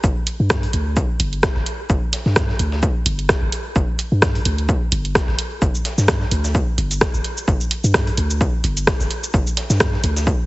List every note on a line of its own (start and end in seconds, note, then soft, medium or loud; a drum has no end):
0.04 0.12 G1 medium
0.04 kick loud
0.04 shaker medium
0.27 closed hi-hat medium
0.27 shaker medium
0.40 0.67 G2 medium
0.50 kick loud
0.50 cross-stick medium
0.50 snare loud
0.50 shaker medium
0.63 closed hi-hat soft
0.73 1.02 D2 medium
0.73 closed hi-hat medium
0.73 shaker medium
0.97 kick loud
0.97 shaker medium
1.20 1.48 G1 loud
1.20 closed hi-hat medium
1.20 shaker medium
1.33 closed hi-hat soft
1.43 kick loud
1.43 cross-stick medium
1.43 snare loud
1.43 shaker medium
1.56 1.63 G1 loud
1.56 snare soft
1.66 closed hi-hat medium
1.66 shaker medium
1.90 1.98 G1 medium
1.90 kick loud
1.90 shaker medium
2.13 snare soft
2.13 closed hi-hat medium
2.13 shaker medium
2.26 2.53 G2 medium
2.26 snare soft
2.36 kick loud
2.36 cross-stick medium
2.36 snare loud
2.36 shaker medium
2.49 snare soft
2.59 2.88 D2 medium
2.59 closed hi-hat medium
2.59 shaker medium
2.72 snare soft
2.83 kick loud
2.83 shaker medium
3.06 3.34 G1 loud
3.06 closed hi-hat loud
3.06 shaker medium
3.19 closed hi-hat soft
3.29 kick loud
3.29 cross-stick medium
3.29 snare loud
3.29 shaker medium
3.42 3.49 G1 medium
3.52 closed hi-hat medium
3.52 shaker medium
3.76 3.84 G1 medium
3.76 kick loud
3.76 shaker medium
3.99 closed hi-hat medium
3.99 shaker medium
4.12 4.39 G2 medium
4.22 kick loud
4.22 cross-stick medium
4.22 snare loud
4.22 shaker medium
4.35 closed hi-hat soft
4.45 4.74 D2 medium
4.45 closed hi-hat medium
4.45 shaker medium
4.58 closed hi-hat soft
4.69 kick loud
4.69 shaker medium
4.92 5.21 G1 loud
4.92 closed hi-hat medium
4.92 shaker medium
5.05 closed hi-hat soft
5.15 kick loud
5.15 cross-stick medium
5.15 snare loud
5.15 shaker medium
5.28 5.35 G1 medium
5.28 snare soft
5.38 closed hi-hat medium
5.38 shaker medium
5.62 5.70 G1 loud
5.62 kick loud
5.62 shaker medium
5.75 shaker soft
5.85 snare soft
5.85 closed hi-hat medium
5.85 shaker medium
5.98 6.25 G2 medium
5.98 snare soft
5.98 shaker soft
6.08 kick loud
6.08 cross-stick medium
6.08 snare loud
6.08 shaker medium
6.21 snare soft
6.31 6.60 D2 medium
6.31 closed hi-hat medium
6.31 shaker medium
6.44 snare soft
6.44 shaker soft
6.55 kick loud
6.55 shaker medium
6.78 7.07 G1 loud
6.78 closed hi-hat medium
6.78 shaker medium
6.91 closed hi-hat soft
6.91 shaker soft
7.01 kick loud
7.01 cross-stick medium
7.01 snare loud
7.01 shaker medium
7.14 7.21 G1 medium
7.14 shaker soft
7.24 closed hi-hat medium
7.24 shaker medium
7.37 shaker soft
7.48 7.56 G1 medium
7.48 kick loud
7.48 shaker medium
7.61 shaker soft
7.71 closed hi-hat medium
7.71 shaker medium
7.84 8.11 G2 medium
7.84 shaker soft
7.94 kick loud
7.94 cross-stick medium
7.94 snare loud
7.94 shaker medium
8.07 closed hi-hat soft
8.17 8.46 D2 medium
8.17 closed hi-hat medium
8.17 shaker medium
8.30 shaker medium
8.41 kick loud
8.41 shaker medium
8.64 8.93 G1 loud
8.64 closed hi-hat medium
8.64 shaker medium
8.77 closed hi-hat soft
8.77 shaker medium
8.87 kick loud
8.87 cross-stick medium
8.87 snare loud
8.87 shaker medium
9.00 9.07 G1 medium
9.00 snare soft
9.00 shaker soft
9.11 closed hi-hat medium
9.11 shaker medium
9.23 shaker medium
9.34 9.42 G1 loud
9.34 kick loud
9.34 shaker medium
9.47 shaker soft
9.57 snare soft
9.57 closed hi-hat medium
9.57 shaker medium
9.70 9.98 G2 medium
9.70 snare soft
9.70 shaker medium
9.80 kick loud
9.80 cross-stick medium
9.80 snare loud
9.80 shaker medium
9.93 snare soft
10.04 10.32 D2 medium
10.04 closed hi-hat medium
10.04 shaker medium
10.17 snare soft
10.17 shaker medium
10.27 kick loud
10.27 shaker medium